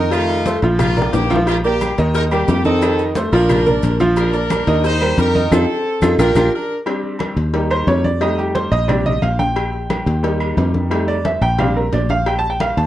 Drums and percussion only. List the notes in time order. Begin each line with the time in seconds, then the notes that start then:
0.12 cowbell, high conga, low agogo, claves, maracas
0.29 high conga, low agogo, maracas
0.46 cowbell, high conga, maracas
0.62 cowbell, high conga, low agogo, maracas
0.79 cowbell, high bongo, high conga, low conga, low agogo, claves, maracas
0.97 high conga, low conga, maracas
1.02 high bongo
1.13 cowbell, low bongo, high conga, low agogo, maracas
1.30 cowbell, high conga, maracas
1.35 low bongo
1.47 cowbell, high conga, low agogo, claves, maracas
1.64 high conga, maracas
1.81 cowbell, high conga, low agogo, claves, maracas
1.98 cowbell, maracas
2.14 cowbell, high conga, low agogo, maracas
2.31 high conga, low agogo, claves, maracas
2.48 cowbell, high conga, low timbale, low agogo, maracas
2.64 high conga, maracas
2.82 cowbell, high conga, low agogo, claves, maracas
2.99 high conga, low agogo, maracas
3.15 cowbell, high conga, maracas
3.32 cowbell, high conga, low agogo, maracas
3.49 cowbell, high conga, low conga, low agogo, claves, maracas
3.66 high conga, low conga, maracas
3.83 cowbell, high conga, low agogo, maracas
4.00 cowbell, high conga, maracas
4.17 cowbell, high conga, low agogo, claves, maracas
4.33 high conga, maracas
4.50 cowbell, high conga, low agogo, claves, maracas
4.67 cowbell, maracas
4.84 cowbell, low agogo, maracas
5.01 high conga, low agogo, claves, maracas
5.18 cowbell, high conga, low agogo, maracas
5.35 high conga, maracas
5.52 cowbell, high conga, high timbale, claves, maracas
6.02 cowbell, high conga, high timbale, claves, maracas
6.19 cowbell, high conga, high timbale, claves, maracas
6.35 cowbell, high conga, high timbale, claves, maracas
6.86 cowbell, high conga, low agogo, claves
7.04 high conga
7.19 cowbell, high conga, low agogo, claves
7.37 cowbell
7.54 cowbell, high conga, low agogo
7.71 high conga, low agogo, claves
7.87 cowbell, high conga, low timbale, low agogo
8.05 high conga
8.21 cowbell, high conga, low agogo, claves
8.38 high conga, low agogo
8.55 cowbell, high conga
8.72 cowbell, high conga, low agogo
8.89 cowbell, high conga, low conga, low agogo, claves
9.06 high conga, low conga
9.22 cowbell, high conga, low agogo
9.39 cowbell, high conga
9.56 cowbell, high conga, low agogo, claves
9.73 high conga
9.90 cowbell, high conga, low agogo, claves
10.07 cowbell
10.24 cowbell, high conga, low agogo
10.40 high conga, low agogo, claves
10.57 cowbell, high conga, low timbale, low agogo
10.74 high conga
10.91 cowbell, low agogo, claves
11.08 high conga, low agogo
11.25 cowbell, high conga
11.42 cowbell, high conga, low agogo
11.59 cowbell, high conga, low conga, low agogo, claves
11.76 high conga
11.93 cowbell, high conga, low timbale, low agogo
12.09 cowbell, high conga
12.26 cowbell, high conga, low agogo, claves
12.43 high conga
12.60 cowbell, high conga, low agogo, claves
12.77 cowbell